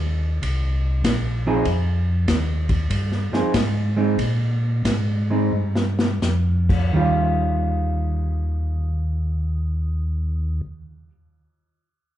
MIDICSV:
0, 0, Header, 1, 4, 480
1, 0, Start_track
1, 0, Tempo, 623053
1, 1283, Time_signature, 4, 2, 24, 8
1, 2731, Tempo, 660066
1, 4171, Tempo, 705053
1, 5131, Tempo, 728155
1, 8585, End_track
2, 0, Start_track
2, 0, Title_t, "Hollow-body jazz guitar"
2, 0, Program_c, 0, 26
2, 1129, Note_on_c, 0, 53, 74
2, 1130, Note_on_c, 0, 60, 76
2, 1136, Note_on_c, 0, 63, 79
2, 1136, Note_on_c, 0, 68, 84
2, 1270, Note_off_c, 0, 53, 0
2, 1271, Note_off_c, 0, 60, 0
2, 1274, Note_off_c, 0, 63, 0
2, 1274, Note_off_c, 0, 68, 0
2, 2563, Note_on_c, 0, 53, 54
2, 2566, Note_on_c, 0, 60, 54
2, 2571, Note_on_c, 0, 63, 56
2, 2575, Note_on_c, 0, 68, 63
2, 2714, Note_off_c, 0, 53, 0
2, 2715, Note_off_c, 0, 60, 0
2, 2718, Note_off_c, 0, 63, 0
2, 2720, Note_off_c, 0, 68, 0
2, 3036, Note_on_c, 0, 56, 60
2, 3041, Note_on_c, 0, 60, 57
2, 3046, Note_on_c, 0, 63, 62
2, 3182, Note_off_c, 0, 56, 0
2, 3185, Note_off_c, 0, 60, 0
2, 3187, Note_off_c, 0, 63, 0
2, 4009, Note_on_c, 0, 56, 58
2, 4015, Note_on_c, 0, 60, 58
2, 4017, Note_on_c, 0, 63, 62
2, 4157, Note_off_c, 0, 56, 0
2, 4160, Note_off_c, 0, 60, 0
2, 4161, Note_off_c, 0, 63, 0
2, 5126, Note_on_c, 0, 51, 60
2, 5136, Note_on_c, 0, 55, 59
2, 5144, Note_on_c, 0, 61, 62
2, 5149, Note_on_c, 0, 65, 65
2, 7865, Note_off_c, 0, 51, 0
2, 7874, Note_off_c, 0, 55, 0
2, 7882, Note_off_c, 0, 61, 0
2, 7887, Note_off_c, 0, 65, 0
2, 8585, End_track
3, 0, Start_track
3, 0, Title_t, "Tonewheel organ"
3, 0, Program_c, 1, 16
3, 0, Note_on_c, 1, 39, 89
3, 311, Note_off_c, 1, 39, 0
3, 324, Note_on_c, 1, 36, 77
3, 789, Note_off_c, 1, 36, 0
3, 800, Note_on_c, 1, 34, 90
3, 1266, Note_off_c, 1, 34, 0
3, 1276, Note_on_c, 1, 41, 72
3, 1744, Note_off_c, 1, 41, 0
3, 1754, Note_on_c, 1, 39, 85
3, 2226, Note_off_c, 1, 39, 0
3, 2233, Note_on_c, 1, 43, 76
3, 2539, Note_off_c, 1, 43, 0
3, 2559, Note_on_c, 1, 43, 36
3, 2643, Note_off_c, 1, 43, 0
3, 2724, Note_on_c, 1, 44, 87
3, 3184, Note_off_c, 1, 44, 0
3, 3195, Note_on_c, 1, 46, 73
3, 3663, Note_off_c, 1, 46, 0
3, 3678, Note_on_c, 1, 44, 88
3, 4156, Note_off_c, 1, 44, 0
3, 4172, Note_on_c, 1, 43, 76
3, 4630, Note_off_c, 1, 43, 0
3, 4643, Note_on_c, 1, 41, 83
3, 5117, Note_off_c, 1, 41, 0
3, 5135, Note_on_c, 1, 39, 77
3, 7556, Note_off_c, 1, 39, 0
3, 8585, End_track
4, 0, Start_track
4, 0, Title_t, "Drums"
4, 327, Note_on_c, 9, 36, 22
4, 329, Note_on_c, 9, 51, 61
4, 404, Note_off_c, 9, 36, 0
4, 406, Note_off_c, 9, 51, 0
4, 803, Note_on_c, 9, 36, 25
4, 804, Note_on_c, 9, 44, 57
4, 804, Note_on_c, 9, 51, 67
4, 806, Note_on_c, 9, 38, 69
4, 880, Note_off_c, 9, 36, 0
4, 881, Note_off_c, 9, 44, 0
4, 881, Note_off_c, 9, 51, 0
4, 883, Note_off_c, 9, 38, 0
4, 1273, Note_on_c, 9, 51, 51
4, 1278, Note_on_c, 9, 36, 21
4, 1350, Note_off_c, 9, 51, 0
4, 1355, Note_off_c, 9, 36, 0
4, 1756, Note_on_c, 9, 36, 23
4, 1756, Note_on_c, 9, 44, 52
4, 1756, Note_on_c, 9, 51, 62
4, 1757, Note_on_c, 9, 38, 65
4, 1833, Note_off_c, 9, 36, 0
4, 1833, Note_off_c, 9, 44, 0
4, 1833, Note_off_c, 9, 51, 0
4, 1834, Note_off_c, 9, 38, 0
4, 2073, Note_on_c, 9, 51, 44
4, 2076, Note_on_c, 9, 36, 44
4, 2150, Note_off_c, 9, 51, 0
4, 2153, Note_off_c, 9, 36, 0
4, 2238, Note_on_c, 9, 36, 19
4, 2238, Note_on_c, 9, 51, 57
4, 2315, Note_off_c, 9, 36, 0
4, 2315, Note_off_c, 9, 51, 0
4, 2402, Note_on_c, 9, 38, 27
4, 2479, Note_off_c, 9, 38, 0
4, 2568, Note_on_c, 9, 38, 42
4, 2645, Note_off_c, 9, 38, 0
4, 2727, Note_on_c, 9, 44, 58
4, 2727, Note_on_c, 9, 51, 68
4, 2729, Note_on_c, 9, 36, 24
4, 2729, Note_on_c, 9, 38, 69
4, 2800, Note_off_c, 9, 44, 0
4, 2800, Note_off_c, 9, 51, 0
4, 2801, Note_off_c, 9, 38, 0
4, 2802, Note_off_c, 9, 36, 0
4, 3198, Note_on_c, 9, 36, 20
4, 3198, Note_on_c, 9, 51, 56
4, 3270, Note_off_c, 9, 36, 0
4, 3271, Note_off_c, 9, 51, 0
4, 3679, Note_on_c, 9, 36, 18
4, 3680, Note_on_c, 9, 44, 50
4, 3680, Note_on_c, 9, 51, 60
4, 3682, Note_on_c, 9, 38, 62
4, 3752, Note_off_c, 9, 36, 0
4, 3753, Note_off_c, 9, 44, 0
4, 3753, Note_off_c, 9, 51, 0
4, 3755, Note_off_c, 9, 38, 0
4, 4327, Note_on_c, 9, 38, 53
4, 4395, Note_off_c, 9, 38, 0
4, 4486, Note_on_c, 9, 38, 68
4, 4554, Note_off_c, 9, 38, 0
4, 4644, Note_on_c, 9, 44, 62
4, 4646, Note_on_c, 9, 38, 53
4, 4713, Note_off_c, 9, 44, 0
4, 4714, Note_off_c, 9, 38, 0
4, 4967, Note_on_c, 9, 36, 62
4, 4970, Note_on_c, 9, 49, 56
4, 5035, Note_off_c, 9, 36, 0
4, 5038, Note_off_c, 9, 49, 0
4, 8585, End_track
0, 0, End_of_file